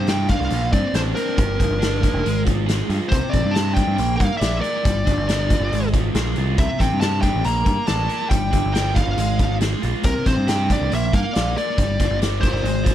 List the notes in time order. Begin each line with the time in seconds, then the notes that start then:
Already playing: G2 C3 G3
0.07 E4 G5, snare, closed hi-hat
0.29 D4 F5, kick, closed hi-hat
0.40 C2, snare
0.50 A#1 A#2, closed hi-hat
0.72 G2 C4 D5, kick, closed hi-hat
0.94 A1 D4 C5, snare, closed hi-hat
1.14 C4 A#4, closed hi-hat
1.36 G1 G2, kick, closed hi-hat
1.58 G1 F3, kick, closed hi-hat
1.70 G1
1.80 D4, snare, closed hi-hat
2.02 A#3, kick, closed hi-hat
2.14 F1
2.24 G#1 G#3, closed hi-hat
2.45 F4, kick, closed hi-hat
2.66 G#4, snare, closed hi-hat
2.90 G2 F4, closed hi-hat
3.09 C2 C3 C5, kick, closed hi-hat
3.29 C4 D5
3.33 A1, kick, closed hi-hat
3.45 G2
3.51 G4 A5
3.55 snare, closed hi-hat
3.74 D4 G5, kick, closed hi-hat
3.87 G2
3.95 A#1 A#3, closed hi-hat
4.16 G2 A#4 F5
4.20 kick, closed hi-hat
4.37 A#1 D5 E5
4.41 snare, closed hi-hat
4.61 A#4 D5, closed hi-hat
4.83 G1 G3, kick, closed hi-hat
5.06 G1 D4, kick, closed hi-hat
5.17 G1
5.28 A#4, snare, closed hi-hat
5.49 F4, kick, closed hi-hat
5.60 G1
5.72 G#1 G#3, closed hi-hat
5.94 F4, kick, closed hi-hat
6.15 A#1 G#4, snare, closed hi-hat
6.36 C2 F4, closed hi-hat
6.58 C2 C3 E5, kick, closed hi-hat
6.79 A1 C4 G5, kick, snare, closed hi-hat
6.93 G2
7.01 G4 A5, snare, closed hi-hat
7.22 D4 G5, kick, closed hi-hat
7.34 A1
7.44 A#1 A#3 A#5, closed hi-hat
7.64 G2 A#4, kick, closed hi-hat
7.86 A1 D5 A5, snare, closed hi-hat
8.08 A#4, closed hi-hat
8.29 G1 G3 G5, kick, closed hi-hat
8.51 G1 D4, kick, closed hi-hat
8.65 G1
8.72 A#4 G5, snare, closed hi-hat
8.95 F4 F5, kick, closed hi-hat
9.07 G1
9.17 G#1 G#3, closed hi-hat
9.39 F4, kick, closed hi-hat
9.61 G#4, snare, closed hi-hat
9.82 A#1 F4, closed hi-hat
10.03 C2 C3 A#4, kick, closed hi-hat
10.23 A1 C4, kick, closed hi-hat
10.27 C5, snare
10.37 G2
10.47 G4 G5, snare, closed hi-hat
10.69 D4 D5, kick, closed hi-hat
10.80 C2
10.91 A#1 A#3 E5, closed hi-hat
11.13 G2 A#4 F5, kick, closed hi-hat
11.34 A#1 D5, snare, closed hi-hat
11.56 A#4 D5, closed hi-hat
11.78 G1 G3, kick, closed hi-hat
12.00 G1 F4, kick, closed hi-hat
12.10 G1
12.22 D5, snare, closed hi-hat
12.41 A#4 C5, kick, closed hi-hat
12.53 G1, snare
12.63 G#1 G#3, closed hi-hat
12.84 F4, kick, closed hi-hat